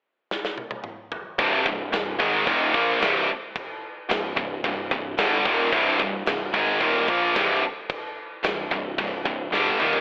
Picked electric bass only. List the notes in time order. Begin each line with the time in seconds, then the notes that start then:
1.39 C1
1.65 C1
1.92 C1
2.20 G#1
2.47 D#1
2.74 A#1
3.01 C1
4.09 C1
4.37 C1
4.64 C1
4.91 C1
5.18 G1
5.45 D#1
5.72 C1
6.00 C1
6.27 C1
6.54 G#1
6.81 D#1
7.08 A#1
7.36 C1
8.44 C1
8.71 C1
8.98 C1
9.25 C1
9.52 G1
9.79 D#1